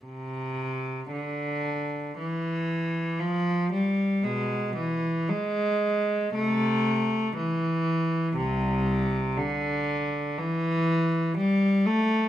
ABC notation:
X:1
M:4/4
L:1/8
Q:1/4=59
K:C
V:1 name="Cello" clef=bass
C,2 D,2 E,2 F, G, | [B,,^G,] E, G,2 [C,A,]2 E,2 | [C,,C,]2 D,2 E,2 G, A, |]